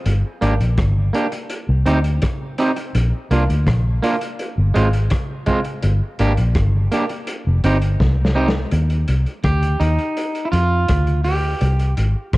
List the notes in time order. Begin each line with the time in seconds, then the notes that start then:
0.06 G1, closed hi-hat
0.41 G#1 A#3 D4 G4, closed hi-hat
0.61 A#1, closed hi-hat
0.78 G1, kick, cross-stick, closed hi-hat
1.13 A#3 D4 G4, closed hi-hat
1.32 muted clean electric guitar stroke, closed hi-hat
1.50 closed hi-hat
1.69 C2
1.86 D2 C4 D#4 G4, closed hi-hat
2.04 closed hi-hat
2.22 kick, cross-stick, closed hi-hat
2.58 C4 D#4 G4, closed hi-hat
2.76 muted clean electric guitar stroke, closed hi-hat
2.95 A#1, closed hi-hat
3.31 C2 A#3 D4 F4, closed hi-hat
3.50 D2, closed hi-hat
3.67 A#1, kick, cross-stick, closed hi-hat
4.03 A#3 D4 F4, closed hi-hat
4.21 closed hi-hat
4.39 closed hi-hat
4.58 G1
4.74 G#1 G#3 C4 F4, closed hi-hat
4.93 closed hi-hat
5.10 kick, cross-stick, closed hi-hat
5.46 G#3 C4 F4, kick, closed hi-hat
5.64 closed hi-hat
5.83 G1, closed hi-hat
6.19 G#1 A#3 D4 G4, closed hi-hat
6.37 A#1, closed hi-hat
6.55 G1, kick, cross-stick, closed hi-hat
6.92 A#3 D4 G4, closed hi-hat
7.09 muted clean electric guitar stroke, closed hi-hat
7.27 closed hi-hat
7.47 F1
7.64 G1 C4 D#4 G4, closed hi-hat
7.82 closed hi-hat
8.00 C2, kick, snare
8.25 snare
8.35 C4 D#4 G4
8.48 snare
8.54 muted clean electric guitar stroke
8.71 D#2, closed hi-hat
8.90 closed hi-hat
9.08 C2, closed hi-hat
9.26 closed hi-hat
9.44 D2 G4, kick, cross-stick, closed hi-hat
9.63 closed hi-hat
9.80 D#2 D#4, closed hi-hat
9.99 closed hi-hat
10.17 closed hi-hat
10.35 closed hi-hat
10.45 E4
10.52 F2 F4, closed hi-hat
10.88 D2, kick, cross-stick, closed hi-hat
11.07 closed hi-hat
11.24 G4, open hi-hat
11.61 C2, closed hi-hat
11.79 closed hi-hat
11.97 G#1, closed hi-hat
12.33 A#1, kick, cross-stick, closed hi-hat